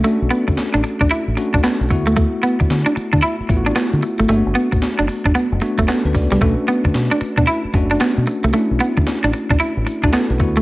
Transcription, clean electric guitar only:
X:1
M:4/4
L:1/16
Q:"Swing 16ths" 1/4=113
K:Bm
V:1 name="Clean electric guitar"
A, z B, z2 D z D E z2 D B, z2 A, | A, z B, z2 D z D E z2 D B, z2 A, | A, z B, z2 D z D B, z2 A, B, z2 G, | A, z B, z2 D z D E z2 D B, z2 A, |
A, z B, z2 D z D E z2 D B, z2 A, |]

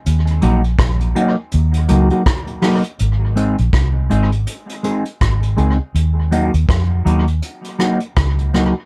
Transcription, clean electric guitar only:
X:1
M:4/4
L:1/16
Q:"Swing 16ths" 1/4=81
K:Abmix
V:1 name="Clean electric guitar"
z2 [G,B,EG] z3 [G,B,EG] z3 [G,B,EG] [G,B,EG] z2 [G,B,EG] z | z2 [A,CEA] z3 [A,CEA] z3 [A,CEA] z3 [A,CEA] z | z2 [G,B,EG] z3 [G,B,EG] z3 [G,B,EG] z3 [G,B,EG] z |]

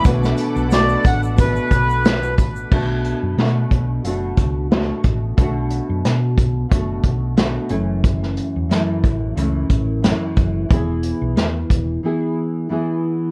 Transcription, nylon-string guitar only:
X:1
M:4/4
L:1/8
Q:"Swing 16ths" 1/4=90
K:Bdor
V:1 name="Nylon-string guitar"
[B,,A,DF]2 [B,,A,DF]2 [B,,A,DF]4 | [B,,A,DF]2 [B,,A,DF]2 [B,,A,DF]2 [B,,A,DF]2 | [B,,A,DF]4 [B,,A,DF]2 [B,,A,DF] [F,,E,A,C]- | [F,,E,A,C]2 [F,,E,A,C]2 [F,,E,A,C]2 [F,,E,A,C]2 |
[E,B,EG]4 [E,B,EG]2 [E,B,EG]2 |]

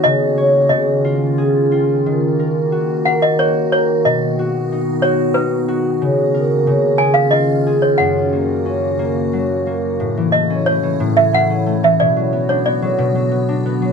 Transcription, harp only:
X:1
M:3/4
L:1/16
Q:1/4=90
K:F#
V:1 name="Harp"
C,2 c2 C,2 E2 G2 E2 | D,2 A2 F2 A2 F2 A2 | B,,2 F2 D2 F2 D2 F2 | C,2 A2 C,2 G2 E2 G2 |
F,,2 A,2 C2 A,2 F,2 A,2 | =A,, =E, =A, C A, E, A,, E, A, C A, E, | B,, F, B, =D B, F, B,, F, B, D B, F, |]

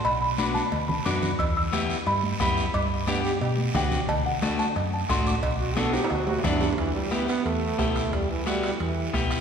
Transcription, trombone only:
X:1
M:4/4
L:1/16
Q:1/4=178
K:Bphr
V:1 name="Trombone"
z16 | z16 | z4 B,2 G2 G3 z4 z | z16 |
z2 F2 A2 G2 F2 F2 D4 | [K:Em] E,2 G,2 B,2 B,2 A,8 | G,2 E,2 G,2 G,2 E,4 z4 |]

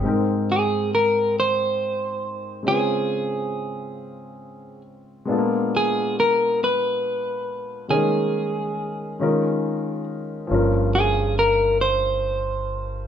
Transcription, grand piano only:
X:1
M:6/8
L:1/8
Q:3/8=46
K:Ab
V:1 name="Grand piano"
[A,CEBg]6 | [A,CDF_c=c]6 | [A,B,_C=DF=A]6 | [G,A,B,DEB]3 [A,DEFB]3 |
[F,B,DFB]6 |]
V:2 name="Grand piano" clef=bass
A,,3 z3 | D,3 z3 | B,,3 z3 | E,3 E,3 |
G,,3 z3 |]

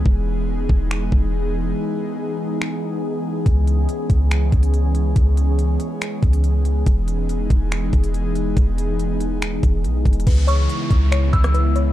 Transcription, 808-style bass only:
X:1
M:4/4
L:1/8
Q:1/4=141
K:E
V:1 name="808-style bass" clef=bass
E,,,3 E,,,2 E,,,3 | z8 | C,,2 z C,,2 C,,3 | C,,3 z2 C,,3 |
E,,,3 E,,,2 E,,,3 | E,,,4- E,,, E,,, B,,, E,,, | C,,2 z C,,2 C,,3 |]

